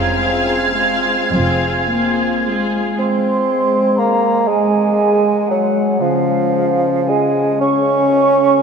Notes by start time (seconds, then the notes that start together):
Already playing: F1 F2 G#3 C4 F4 G#4 F5 G#6
0.16 G#3 C4 F4 G#4
0.74 G#3 C4 F4 G#4
1.32 F1 F2 C4 F4 G#4
1.89 A#3 F4 G#4
2.45 G#3 F4 G#4
2.99 G#3 C4 C6
3.98 A#3 A#5
4.48 G#3 G#5
5.49 F#3 F#5
6.00 C#3 F3 F5
7.06 G#3 G#5
7.60 C#4 C#6